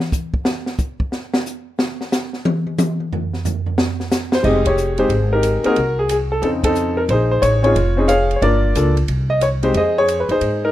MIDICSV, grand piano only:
0, 0, Header, 1, 2, 480
1, 0, Start_track
1, 0, Key_signature, -4, "minor"
1, 0, Tempo, 331492
1, 676, Time_signature, 4, 2, 24, 8
1, 15518, End_track
2, 0, Start_track
2, 0, Title_t, "Grand piano"
2, 0, Program_c, 0, 0
2, 6294, Note_on_c, 0, 72, 85
2, 6410, Note_on_c, 0, 56, 51
2, 6427, Note_on_c, 0, 60, 45
2, 6432, Note_on_c, 0, 63, 43
2, 6439, Note_on_c, 0, 75, 80
2, 6442, Note_on_c, 0, 67, 55
2, 6454, Note_off_c, 0, 72, 0
2, 6459, Note_on_c, 0, 68, 63
2, 6697, Note_off_c, 0, 56, 0
2, 6705, Note_off_c, 0, 60, 0
2, 6708, Note_off_c, 0, 63, 0
2, 6713, Note_off_c, 0, 67, 0
2, 6721, Note_off_c, 0, 75, 0
2, 6742, Note_off_c, 0, 68, 0
2, 6759, Note_on_c, 0, 73, 77
2, 6764, Note_on_c, 0, 68, 58
2, 6768, Note_on_c, 0, 67, 56
2, 7196, Note_off_c, 0, 73, 0
2, 7213, Note_off_c, 0, 67, 0
2, 7218, Note_on_c, 0, 56, 54
2, 7225, Note_on_c, 0, 60, 52
2, 7226, Note_off_c, 0, 68, 0
2, 7230, Note_on_c, 0, 72, 80
2, 7233, Note_on_c, 0, 63, 46
2, 7234, Note_on_c, 0, 67, 63
2, 7247, Note_on_c, 0, 68, 59
2, 7374, Note_off_c, 0, 56, 0
2, 7377, Note_off_c, 0, 60, 0
2, 7381, Note_off_c, 0, 63, 0
2, 7382, Note_off_c, 0, 67, 0
2, 7713, Note_on_c, 0, 70, 77
2, 7718, Note_off_c, 0, 72, 0
2, 7735, Note_on_c, 0, 67, 53
2, 7739, Note_on_c, 0, 63, 54
2, 8135, Note_off_c, 0, 68, 0
2, 8153, Note_off_c, 0, 70, 0
2, 8163, Note_on_c, 0, 58, 64
2, 8166, Note_off_c, 0, 63, 0
2, 8181, Note_on_c, 0, 60, 61
2, 8188, Note_on_c, 0, 63, 62
2, 8196, Note_on_c, 0, 70, 89
2, 8199, Note_on_c, 0, 68, 74
2, 8213, Note_on_c, 0, 66, 55
2, 8325, Note_off_c, 0, 67, 0
2, 8327, Note_off_c, 0, 58, 0
2, 8335, Note_off_c, 0, 60, 0
2, 8339, Note_off_c, 0, 63, 0
2, 8344, Note_off_c, 0, 68, 0
2, 8673, Note_on_c, 0, 68, 76
2, 8682, Note_off_c, 0, 70, 0
2, 8826, Note_off_c, 0, 68, 0
2, 8847, Note_on_c, 0, 68, 77
2, 8920, Note_off_c, 0, 68, 0
2, 9098, Note_off_c, 0, 66, 0
2, 9148, Note_on_c, 0, 69, 73
2, 9296, Note_off_c, 0, 69, 0
2, 9296, Note_on_c, 0, 49, 51
2, 9296, Note_on_c, 0, 60, 50
2, 9318, Note_on_c, 0, 63, 50
2, 9318, Note_on_c, 0, 69, 82
2, 9319, Note_off_c, 0, 60, 0
2, 9341, Note_on_c, 0, 60, 59
2, 9390, Note_off_c, 0, 69, 0
2, 9619, Note_off_c, 0, 60, 0
2, 9623, Note_off_c, 0, 63, 0
2, 9623, Note_on_c, 0, 69, 87
2, 9641, Note_on_c, 0, 60, 61
2, 9645, Note_on_c, 0, 63, 57
2, 10030, Note_off_c, 0, 49, 0
2, 10095, Note_on_c, 0, 70, 75
2, 10116, Note_off_c, 0, 69, 0
2, 10167, Note_off_c, 0, 70, 0
2, 10239, Note_off_c, 0, 60, 0
2, 10240, Note_off_c, 0, 63, 0
2, 10285, Note_on_c, 0, 72, 88
2, 10304, Note_on_c, 0, 63, 61
2, 10317, Note_on_c, 0, 68, 63
2, 10565, Note_off_c, 0, 72, 0
2, 10590, Note_on_c, 0, 72, 84
2, 10743, Note_on_c, 0, 73, 95
2, 10763, Note_off_c, 0, 72, 0
2, 11039, Note_off_c, 0, 73, 0
2, 11043, Note_on_c, 0, 60, 57
2, 11044, Note_off_c, 0, 63, 0
2, 11046, Note_off_c, 0, 68, 0
2, 11050, Note_on_c, 0, 61, 52
2, 11061, Note_on_c, 0, 73, 90
2, 11066, Note_on_c, 0, 63, 49
2, 11068, Note_on_c, 0, 68, 61
2, 11091, Note_on_c, 0, 65, 59
2, 11207, Note_off_c, 0, 60, 0
2, 11211, Note_off_c, 0, 61, 0
2, 11219, Note_off_c, 0, 63, 0
2, 11220, Note_off_c, 0, 68, 0
2, 11539, Note_on_c, 0, 60, 62
2, 11551, Note_on_c, 0, 61, 63
2, 11566, Note_on_c, 0, 68, 66
2, 11567, Note_on_c, 0, 63, 61
2, 11695, Note_off_c, 0, 60, 0
2, 11695, Note_off_c, 0, 68, 0
2, 11697, Note_off_c, 0, 73, 0
2, 11700, Note_on_c, 0, 77, 93
2, 11701, Note_off_c, 0, 61, 0
2, 11709, Note_off_c, 0, 63, 0
2, 11717, Note_on_c, 0, 68, 70
2, 11718, Note_on_c, 0, 73, 66
2, 11978, Note_off_c, 0, 65, 0
2, 12085, Note_off_c, 0, 73, 0
2, 12107, Note_on_c, 0, 73, 63
2, 12127, Note_off_c, 0, 77, 0
2, 12162, Note_off_c, 0, 68, 0
2, 12187, Note_off_c, 0, 73, 0
2, 12187, Note_on_c, 0, 58, 57
2, 12196, Note_on_c, 0, 74, 84
2, 12199, Note_on_c, 0, 65, 52
2, 12200, Note_on_c, 0, 62, 54
2, 12211, Note_on_c, 0, 70, 63
2, 12653, Note_off_c, 0, 58, 0
2, 12659, Note_off_c, 0, 65, 0
2, 12660, Note_off_c, 0, 62, 0
2, 12665, Note_off_c, 0, 70, 0
2, 12683, Note_on_c, 0, 58, 55
2, 12689, Note_on_c, 0, 62, 52
2, 12700, Note_on_c, 0, 65, 56
2, 12702, Note_on_c, 0, 69, 61
2, 12928, Note_off_c, 0, 74, 0
2, 12955, Note_off_c, 0, 58, 0
2, 12958, Note_off_c, 0, 62, 0
2, 12963, Note_off_c, 0, 65, 0
2, 12965, Note_off_c, 0, 69, 0
2, 13464, Note_on_c, 0, 75, 86
2, 13624, Note_off_c, 0, 75, 0
2, 13647, Note_on_c, 0, 73, 85
2, 13719, Note_off_c, 0, 73, 0
2, 13939, Note_on_c, 0, 60, 53
2, 13949, Note_on_c, 0, 56, 59
2, 13955, Note_on_c, 0, 63, 54
2, 13957, Note_on_c, 0, 72, 79
2, 13963, Note_on_c, 0, 67, 62
2, 14096, Note_off_c, 0, 60, 0
2, 14101, Note_off_c, 0, 56, 0
2, 14104, Note_off_c, 0, 63, 0
2, 14108, Note_off_c, 0, 67, 0
2, 14127, Note_off_c, 0, 72, 0
2, 14150, Note_on_c, 0, 72, 72
2, 14150, Note_on_c, 0, 75, 88
2, 14156, Note_on_c, 0, 68, 67
2, 14419, Note_off_c, 0, 75, 0
2, 14430, Note_off_c, 0, 68, 0
2, 14452, Note_on_c, 0, 68, 69
2, 14456, Note_on_c, 0, 73, 103
2, 14766, Note_off_c, 0, 73, 0
2, 14770, Note_on_c, 0, 71, 57
2, 14901, Note_off_c, 0, 71, 0
2, 14914, Note_off_c, 0, 68, 0
2, 14915, Note_off_c, 0, 72, 0
2, 14924, Note_on_c, 0, 63, 64
2, 14936, Note_on_c, 0, 68, 63
2, 14936, Note_on_c, 0, 72, 90
2, 15367, Note_off_c, 0, 72, 0
2, 15397, Note_off_c, 0, 63, 0
2, 15417, Note_on_c, 0, 70, 81
2, 15419, Note_on_c, 0, 63, 64
2, 15518, Note_off_c, 0, 63, 0
2, 15518, Note_off_c, 0, 68, 0
2, 15518, Note_off_c, 0, 70, 0
2, 15518, End_track
0, 0, End_of_file